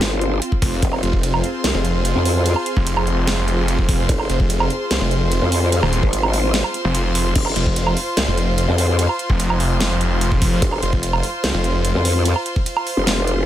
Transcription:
0.00 0.40 G1 loud
0.00 7.32 C4 medium
0.00 7.32 F4 medium
0.00 13.46 F4 medium
0.00 0.81 C5 medium
0.00 13.46 C5 medium
0.00 13.46 C6 medium
0.00 snare loud
0.00 closed hi-hat medium
0.21 closed hi-hat medium
0.42 closed hi-hat medium
0.52 kick medium
0.62 0.81 F1 loud
0.62 kick loud
0.62 open hi-hat medium
0.82 1.01 F1 loud
0.82 7.34 G#4 medium
0.82 kick loud
0.82 closed hi-hat medium
0.82 ride medium
0.93 low woodblock medium
1.03 1.42 F1 loud
1.03 closed hi-hat medium
1.13 kick medium
1.23 closed hi-hat medium
1.23 ride soft
1.34 low woodblock medium
1.44 closed hi-hat medium
1.64 1.73 C2 loud
1.64 snare loud
1.64 closed hi-hat medium
1.64 ride medium
1.74 2.14 F1 loud
1.85 closed hi-hat medium
2.05 closed hi-hat medium
2.05 ride soft
2.15 2.55 F2 loud
2.25 open hi-hat medium
2.46 closed hi-hat medium
2.46 ride medium
2.56 low woodblock medium
2.66 closed hi-hat medium
2.77 3.36 F1 loud
2.77 kick medium
2.87 closed hi-hat medium
2.87 ride medium
2.97 low woodblock medium
3.07 closed hi-hat medium
3.27 snare loud
3.27 closed hi-hat medium
3.27 ride medium
3.38 3.77 F1 loud
3.48 closed hi-hat soft
3.68 closed hi-hat medium
3.68 ride soft
3.79 3.97 F1 loud
3.79 kick medium
3.89 kick loud
3.89 open hi-hat medium
3.99 4.07 F1 loud
4.09 4.28 F1 loud
4.09 kick loud
4.09 closed hi-hat medium
4.09 ride medium
4.20 low woodblock medium
4.29 4.69 F1 loud
4.29 closed hi-hat medium
4.40 kick medium
4.50 closed hi-hat medium
4.50 ride soft
4.60 low woodblock medium
4.70 closed hi-hat medium
4.91 4.99 C2 loud
4.91 snare loud
4.91 closed hi-hat medium
4.91 ride medium
5.01 5.40 F1 loud
5.11 closed hi-hat medium
5.32 closed hi-hat medium
5.32 ride soft
5.42 5.81 F2 loud
5.52 open hi-hat loud
5.72 closed hi-hat medium
5.72 ride medium
5.83 6.01 D#1 loud
5.83 low woodblock medium
5.93 closed hi-hat medium
6.03 6.63 G#1 medium
6.03 kick medium
6.13 closed hi-hat medium
6.13 ride soft
6.23 low woodblock medium
6.33 open hi-hat medium
6.54 snare loud
6.54 closed hi-hat medium
6.54 ride medium
6.64 low woodblock medium
6.74 closed hi-hat medium
6.85 7.34 F1 loud
6.95 closed hi-hat medium
6.95 ride soft
7.15 open hi-hat loud
7.36 7.54 F1 loud
7.36 kick loud
7.36 closed hi-hat medium
7.36 crash loud
7.36 ride medium
7.46 low woodblock medium
7.56 7.95 F1 loud
7.56 closed hi-hat medium
7.66 kick medium
7.76 closed hi-hat medium
7.76 ride soft
7.87 low woodblock medium
7.97 open hi-hat medium
8.17 8.26 C2 loud
8.17 snare loud
8.17 closed hi-hat medium
8.17 ride medium
8.28 8.67 F1 loud
8.38 closed hi-hat medium
8.58 closed hi-hat medium
8.58 ride soft
8.68 9.08 F2 loud
8.78 open hi-hat loud
8.99 closed hi-hat medium
8.99 ride medium
9.09 low woodblock medium
9.19 closed hi-hat medium
9.30 9.89 F1 loud
9.30 kick medium
9.40 closed hi-hat medium
9.40 ride soft
9.50 low woodblock medium
9.60 open hi-hat medium
9.80 snare loud
9.80 closed hi-hat medium
9.80 ride medium
9.91 10.30 F1 loud
10.01 closed hi-hat medium
10.21 closed hi-hat medium
10.21 ride soft
10.32 10.50 F1 loud
10.32 kick medium
10.42 kick loud
10.42 open hi-hat medium
10.52 10.60 F1 medium
10.62 10.81 F1 loud
10.62 kick loud
10.62 closed hi-hat medium
10.62 ride medium
10.73 low woodblock medium
10.82 11.22 F1 loud
10.82 closed hi-hat medium
10.93 kick medium
11.03 closed hi-hat medium
11.03 ride soft
11.13 low woodblock medium
11.23 open hi-hat medium
11.44 11.52 C2 loud
11.44 snare loud
11.44 closed hi-hat medium
11.44 ride medium
11.54 11.93 F1 loud
11.64 closed hi-hat medium
11.85 closed hi-hat medium
11.85 ride soft
11.95 12.34 F2 loud
12.05 open hi-hat medium
12.25 closed hi-hat medium
12.25 ride medium
12.36 low woodblock medium
12.46 closed hi-hat medium
12.56 kick medium
12.66 closed hi-hat medium
12.66 ride soft
12.77 low woodblock medium
12.87 open hi-hat medium
12.97 13.46 F1 loud
13.07 snare loud
13.07 closed hi-hat medium
13.07 ride medium
13.27 closed hi-hat medium

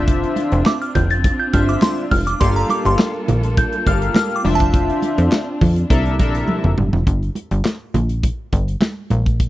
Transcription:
0.00 0.26 F1 loud
0.00 2.38 C4 medium
0.00 0.72 D4 medium
0.00 4.41 D4 medium
0.00 0.72 F4 medium
0.00 5.86 F4 medium
0.00 0.72 C5 medium
0.00 0.72 E5 medium
0.00 0.14 G6 loud
0.08 kick loud
0.08 closed hi-hat medium
0.23 closed hi-hat soft
0.36 closed hi-hat medium
0.36 muted conga soft
0.52 0.63 F1 loud
0.52 closed hi-hat medium
0.66 0.82 D6 loud
0.66 snare loud
0.66 clap medium
0.66 high conga medium
0.82 0.94 F6 medium
0.82 closed hi-hat soft
0.95 1.31 F1 loud
0.95 1.10 G6 loud
0.95 kick medium
0.95 closed hi-hat medium
0.95 muted conga soft
0.95 low conga medium
1.10 1.41 A6 medium
1.10 closed hi-hat medium
1.24 kick loud
1.24 closed hi-hat medium
1.24 muted conga medium
1.39 1.54 G6 loud
1.53 1.77 G1 medium
1.53 2.04 D4 medium
1.53 2.04 F4 medium
1.53 2.05 C5 medium
1.53 2.05 E5 medium
1.53 1.69 F6 medium
1.53 kick medium
1.53 closed hi-hat medium
1.53 muted conga medium
1.69 1.83 D6 medium
1.69 closed hi-hat medium
1.82 1.95 C6 medium
1.82 snare loud
1.82 clap medium
1.82 high conga medium
1.98 closed hi-hat soft
2.11 2.35 F1 medium
2.11 2.27 F6 medium
2.11 kick medium
2.11 open hi-hat medium
2.11 high conga medium
2.27 2.41 D6 medium
2.27 closed hi-hat soft
2.40 2.64 G1 loud
2.40 4.43 G3 medium
2.40 3.09 A#3 medium
2.40 4.43 A#3 medium
2.40 3.09 G4 medium
2.40 4.43 A4 medium
2.40 3.09 A4 medium
2.40 3.09 F5 medium
2.40 2.57 C6 medium
2.40 kick loud
2.40 closed hi-hat medium
2.56 2.70 A#5 medium
2.56 closed hi-hat soft
2.69 2.86 D6 medium
2.69 closed hi-hat medium
2.69 muted conga medium
2.85 2.96 G1 loud
2.85 2.99 C6 medium
2.85 closed hi-hat medium
2.99 snare loud
2.99 clap medium
2.99 high conga medium
3.28 3.64 A#1 medium
3.28 closed hi-hat medium
3.28 muted conga soft
3.28 low conga medium
3.43 closed hi-hat medium
3.57 3.85 G6 loud
3.57 kick loud
3.57 closed hi-hat medium
3.57 muted conga medium
3.72 closed hi-hat soft
3.86 4.10 G1 medium
3.86 4.37 A#3 medium
3.86 4.37 G4 medium
3.86 4.38 A4 medium
3.86 4.38 F5 medium
3.86 4.15 F6 loud
3.86 kick loud
3.86 closed hi-hat medium
3.86 muted conga medium
4.02 closed hi-hat medium
4.15 4.36 F6 loud
4.15 snare loud
4.15 clap medium
4.15 high conga medium
4.31 closed hi-hat soft
4.36 4.44 D6 medium
4.44 4.92 F1 loud
4.44 5.89 C4 medium
4.44 5.38 D4 medium
4.44 7.04 D4 medium
4.44 5.38 F4 medium
4.44 5.38 C5 medium
4.44 5.38 E5 medium
4.44 open hi-hat medium
4.44 high conga medium
4.55 5.96 A5 medium
4.60 kick medium
4.60 closed hi-hat soft
4.74 kick loud
4.74 closed hi-hat medium
4.90 closed hi-hat soft
5.02 closed hi-hat medium
5.02 muted conga medium
5.18 5.29 F2 loud
5.18 closed hi-hat medium
5.32 snare loud
5.32 clap medium
5.32 high conga medium
5.61 5.85 F2 loud
5.61 kick medium
5.61 open hi-hat medium
5.61 muted conga soft
5.61 low conga medium
5.76 closed hi-hat medium
5.90 6.21 C2 loud
5.90 7.06 C3 medium
5.90 7.06 G3 medium
5.90 7.06 A#3 medium
5.90 7.06 C4 medium
5.90 6.14 D4 medium
5.90 7.06 E4 medium
5.90 6.14 A4 medium
5.90 6.14 A#4 medium
5.90 6.14 E5 loud
5.90 kick loud
5.90 closed hi-hat medium
5.90 muted conga medium
6.05 closed hi-hat soft
6.19 6.43 A#1 loud
6.19 6.70 D4 medium
6.19 6.70 A4 medium
6.19 6.70 A#4 medium
6.19 6.71 E5 loud
6.19 kick medium
6.19 closed hi-hat medium
6.19 muted conga medium
6.35 closed hi-hat medium
6.48 high tom medium
6.48 high conga medium
6.64 6.75 F1 medium
6.64 mid tom medium
6.77 6.90 G1 medium
6.77 mid tom loud
6.77 high conga medium
6.93 7.04 F1 medium
6.93 floor tom medium
7.07 7.30 G1 loud
7.07 kick loud
7.07 closed hi-hat medium
7.23 closed hi-hat soft
7.35 closed hi-hat medium
7.35 muted conga soft
7.51 7.62 G1 loud
7.51 closed hi-hat medium
7.65 snare loud
7.65 clap medium
7.65 high conga medium
7.94 8.30 A#1 medium
7.94 closed hi-hat medium
7.94 muted conga soft
7.94 low conga medium
8.09 closed hi-hat medium
8.23 kick loud
8.23 closed hi-hat medium
8.23 muted conga soft
8.53 8.76 G1 loud
8.53 kick medium
8.53 closed hi-hat medium
8.53 muted conga medium
8.68 closed hi-hat soft
8.80 snare loud
8.80 clap medium
8.80 high conga medium
9.10 9.49 A#1 loud
9.10 closed hi-hat medium
9.10 high conga medium
9.26 kick medium
9.26 closed hi-hat soft
9.40 kick loud
9.40 closed hi-hat medium

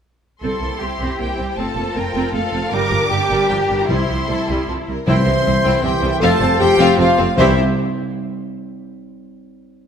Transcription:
0.42 0.51 C2 soft
0.42 0.61 C4 soft
0.42 1.55 E4 soft
0.42 1.54 G4 soft
0.42 0.79 A4 soft
0.42 2.69 C5 soft
0.42 1.16 C6 medium
0.61 0.69 C2 soft
0.61 0.70 A#3 soft
0.81 0.89 C2 soft
0.81 0.90 C4 soft
0.81 1.58 G4 soft
1.01 1.08 C2 soft
1.01 1.19 C4 soft
1.20 1.28 C2 soft
1.20 1.28 A#3 soft
1.20 1.48 G5 medium
1.38 1.46 C2 soft
1.38 1.46 C4 soft
1.49 1.58 G5 soft
1.57 1.65 F1 soft
1.57 1.76 C4 soft
1.57 2.70 F4 soft
1.57 1.95 A4 soft
1.57 2.73 A4 soft
1.57 1.96 A5 medium
1.77 1.84 F1 soft
1.77 1.85 A#3 soft
1.96 2.04 F1 soft
1.96 2.05 C4 soft
1.96 2.34 A#4 medium
1.96 2.35 G5 medium
2.14 2.22 F1 medium
2.14 2.33 C4 medium
2.34 2.41 F1 soft
2.34 2.42 A#3 soft
2.34 2.72 A4 medium
2.34 2.72 F5 medium
2.53 2.61 F1 soft
2.53 2.61 C4 medium
2.72 2.80 G1 medium
2.72 2.91 G3 medium
2.72 3.89 D4 medium
2.72 4.22 G4 medium
2.72 3.10 A#4 medium
2.72 3.87 A#4 medium
2.72 3.50 D6 medium
2.92 2.99 G1 medium
2.92 2.99 F3 medium
3.10 3.18 G1 soft
3.10 3.18 G3 soft
3.10 3.87 G4 medium
3.30 3.37 G1 medium
3.30 3.48 G3 medium
3.49 3.57 G1 medium
3.49 3.58 F3 soft
3.49 3.57 G5 medium
3.70 3.78 G1 soft
3.70 3.78 G3 soft
3.80 3.84 A#5 medium
3.88 3.97 C2 medium
3.88 4.44 C3 medium
3.88 4.08 G3 medium
3.88 4.88 E4 medium
3.88 4.86 E4 soft
3.88 4.25 C5 soft
3.88 4.66 C6 medium
4.08 4.17 C2 soft
4.08 4.16 F3 soft
4.28 4.37 C2 soft
4.28 4.36 G3 soft
4.28 4.47 A4 medium
4.48 4.57 C2 medium
4.48 4.66 G3 medium
4.48 4.68 G4 medium
4.68 4.77 C2 soft
4.68 4.76 F3 soft
4.68 4.76 A4 medium
4.88 4.96 C2 soft
4.88 4.96 G3 soft
4.88 5.07 A#4 soft
5.07 5.15 C2 medium
5.07 5.16 C2 medium
5.07 5.61 C3 medium
5.07 5.80 C3 soft
5.07 5.80 E3 medium
5.07 5.25 C4 medium
5.07 5.25 E4 medium
5.07 5.80 C5 medium
5.07 5.86 C5 medium
5.07 5.80 E5 medium
5.07 5.26 G5 medium
5.07 5.80 C6 medium
5.25 5.35 C2 medium
5.25 5.35 C2 soft
5.25 5.34 C4 medium
5.25 5.33 E5 soft
5.45 5.54 C2 soft
5.45 5.54 C2 medium
5.45 5.54 G3 soft
5.45 5.54 C4 soft
5.45 5.53 C5 soft
5.63 5.73 C2 medium
5.63 5.83 C4 medium
5.63 5.82 E4 medium
5.63 5.81 G5 medium
5.83 5.92 C2 medium
5.83 6.21 C3 medium
5.83 6.21 E3 medium
5.83 5.92 C4 medium
5.83 6.11 G4 medium
5.83 6.12 G4 medium
5.83 6.21 C5 medium
5.83 5.91 E5 medium
5.83 6.21 E5 medium
5.83 6.11 G5 medium
6.02 6.10 C2 medium
6.02 6.11 G3 medium
6.02 6.11 C4 medium
6.02 6.10 C5 medium
6.12 6.22 G4 medium
6.12 6.16 G5 medium
6.20 6.29 F1 medium
6.20 6.30 F2 medium
6.20 6.97 C3 medium
6.20 6.96 F3 medium
6.20 6.40 C4 medium
6.20 6.40 F4 medium
6.20 6.58 A4 loud
6.20 6.60 A4 loud
6.20 6.97 C5 medium
6.20 6.97 F5 medium
6.20 6.40 F5 medium
6.20 6.59 A5 medium
6.40 6.48 F1 medium
6.40 6.48 F2 medium
6.40 6.49 C4 medium
6.40 6.49 C5 medium
6.59 6.68 F1 medium
6.59 6.68 F2 medium
6.59 6.69 A3 medium
6.59 6.68 C4 medium
6.59 6.98 G4 loud
6.59 7.01 G4 loud
6.59 6.68 A4 medium
6.59 6.98 G5 loud
6.78 6.87 F1 loud
6.78 6.86 F2 loud
6.78 6.97 C4 loud
6.78 6.97 F4 loud
6.78 6.98 F5 loud
6.98 7.07 F1 medium
6.98 7.06 F2 medium
6.98 7.18 C3 medium
6.98 7.17 F3 medium
6.98 7.07 C4 medium
6.98 7.37 F4 medium
6.98 7.37 F4 loud
6.98 7.18 C5 medium
6.98 7.08 C5 medium
6.98 7.18 F5 medium
6.98 7.37 F5 medium
7.18 7.26 F1 medium
7.18 7.26 F2 medium
7.18 7.27 A3 medium
7.18 7.27 C4 medium
7.18 7.26 A4 medium
7.36 7.59 C2 loud
7.36 7.59 C2 medium
7.36 7.54 C3 medium
7.36 7.56 C3 loud
7.36 7.53 E3 medium
7.36 7.53 C4 loud
7.36 7.60 E4 medium
7.36 7.60 G4 medium
7.36 7.54 C5 medium
7.36 7.59 C5 medium
7.36 7.54 C5 loud
7.36 7.60 E5 medium

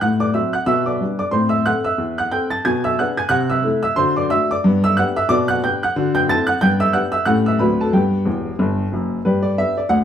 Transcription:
0.01 0.30 A2 medium
0.01 0.20 F#5 medium
0.01 0.21 F#6 medium
0.20 0.33 D5 medium
0.20 0.34 D6 medium
0.34 0.52 F#3 soft
0.34 0.53 C4 soft
0.34 0.53 E5 medium
0.34 0.54 E6 medium
0.53 0.67 F#5 medium
0.53 0.67 F#6 medium
0.66 0.95 B2 medium
0.66 0.86 E5 medium
0.66 0.87 E6 loud
0.86 1.18 D5 medium
0.86 1.17 D6 medium
1.01 1.19 G3 soft
1.01 1.20 B3 soft
1.01 1.19 D4 soft
1.19 1.32 D5 medium
1.19 1.33 D6 medium
1.31 1.61 A2 medium
1.31 1.52 C4 soft
1.31 1.51 C5 medium
1.31 1.52 C6 medium
1.49 1.64 E5 medium
1.49 1.65 E6 medium
1.66 1.84 C4 soft
1.66 1.85 A4 medium
1.66 1.85 F#5 medium
1.66 1.86 F#6 loud
1.84 2.17 E5 medium
1.84 2.18 E6 medium
1.98 2.27 E2 medium
2.18 2.32 F#5 medium
2.18 2.32 F#6 medium
2.32 2.50 C4 soft
2.32 2.50 A4 soft
2.32 2.51 G5 medium
2.32 2.52 G6 medium
2.50 2.64 A5 medium
2.50 2.65 A6 medium
2.65 2.94 B2 medium
2.65 2.85 G#5 medium
2.65 2.85 G#6 loud
2.84 2.97 E5 medium
2.84 2.98 E6 loud
2.99 3.17 B3 soft
2.99 3.17 D4 soft
2.99 3.18 G#4 medium
2.99 3.17 F#5 medium
2.99 3.18 F#6 medium
3.17 3.31 G#5 medium
3.17 3.31 G#6 medium
3.29 3.58 C3 medium
3.29 3.49 F#5 medium
3.29 3.50 F#6 loud
3.50 3.82 E5 medium
3.50 3.81 E6 medium
3.63 3.82 A3 medium
3.63 3.82 E4 soft
3.63 3.82 A4 soft
3.83 3.97 E5 medium
3.83 3.97 E6 loud
3.96 4.25 D3 medium
3.96 4.17 F#4 medium
3.96 4.16 C5 medium
3.96 4.16 C6 loud
4.17 4.30 D5 medium
4.17 4.30 D6 medium
4.30 4.49 A3 soft
4.30 4.49 D4 medium
4.30 4.49 F#4 medium
4.30 4.49 E5 medium
4.30 4.50 E6 loud
4.51 4.82 D5 medium
4.51 4.84 D6 loud
4.64 4.92 G2 loud
4.64 4.84 B3 medium
4.84 4.96 E5 medium
4.84 4.97 E6 loud
4.97 5.16 B3 medium
4.97 5.16 D4 medium
4.97 5.16 G4 medium
4.97 5.16 F#5 medium
4.97 5.16 F#6 loud
5.16 5.29 E5 medium
5.16 5.30 E6 loud
5.29 5.58 B2 medium
5.29 5.49 D5 medium
5.29 5.49 D6 loud
5.48 5.62 F#5 medium
5.48 5.62 F#6 loud
5.64 5.82 B3 soft
5.64 5.82 D4 soft
5.64 5.82 G4 medium
5.64 5.81 G5 medium
5.64 5.83 G6 loud
5.83 6.14 F#5 medium
5.83 6.16 F#6 medium
5.96 6.24 D3 medium
5.96 6.16 F#4 medium
6.15 6.28 G5 medium
6.15 6.28 G6 loud
6.29 6.48 C4 medium
6.29 6.48 E4 medium
6.29 6.48 A4 medium
6.29 6.48 A5 medium
6.29 6.49 A6 loud
6.47 6.61 F#5 medium
6.47 6.61 F#6 loud
6.61 6.90 G2 medium
6.61 6.81 B3 medium
6.61 6.80 G5 medium
6.61 6.81 G6 loud
6.80 6.93 E5 medium
6.80 6.94 E6 loud
6.93 7.12 B3 soft
6.93 7.12 D4 medium
6.93 7.12 G4 medium
6.93 7.12 F#5 medium
6.93 7.13 F#6 medium
7.12 7.26 E5 medium
7.12 7.26 E6 loud
7.25 7.55 A2 loud
7.25 7.44 A3 medium
7.25 7.46 C#4 medium
7.25 7.45 G4 soft
7.25 7.45 F#5 medium
7.25 7.46 F#6 loud
7.46 7.60 E5 medium
7.46 7.60 E6 medium
7.59 7.88 D2 medium
7.59 7.80 F#3 soft
7.59 7.78 C4 soft
7.59 7.78 D4 soft
7.59 7.79 F#4 soft
7.59 7.79 B4 medium
7.59 7.79 B5 medium
7.81 7.93 A4 medium
7.81 7.94 A5 medium
7.93 8.21 G2 medium
7.93 8.13 B3 medium
7.93 8.89 G4 medium
7.93 8.92 G5 medium
8.25 8.51 E1 medium
8.25 8.50 E2 medium
8.59 8.84 G1 medium
8.59 8.84 G2 medium
8.92 9.17 F#1 medium
8.92 9.18 F#2 medium
9.25 9.53 G2 medium
9.25 9.44 D4 medium
9.25 9.44 G4 medium
9.25 9.45 B4 medium
9.43 9.57 D5 medium
9.58 9.77 B3 soft
9.58 9.77 D4 soft
9.58 9.77 G4 soft
9.58 9.78 E5 medium
9.77 9.91 D5 medium
9.89 10.04 D2 medium
9.89 10.04 F#5 loud

